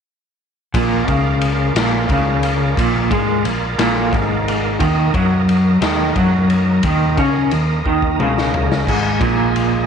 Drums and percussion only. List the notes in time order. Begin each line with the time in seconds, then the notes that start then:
0.74 kick, ride
1.08 kick, ride
1.41 ride
1.76 snare, ride
2.09 kick, ride
2.43 ride
2.77 kick, ride
3.11 kick, ride
3.45 ride
3.79 snare, ride
4.13 kick, ride
4.48 ride
4.80 kick, ride
5.14 kick, ride
5.49 ride
5.82 snare, ride
6.16 kick, ride
6.50 ride
6.83 kick, ride
7.17 kick, ride
7.51 ride
7.86 kick
8.02 kick
8.20 mid tom
8.38 snare
8.54 floor tom
8.72 snare
8.87 kick, crash
9.21 kick, ride
9.56 ride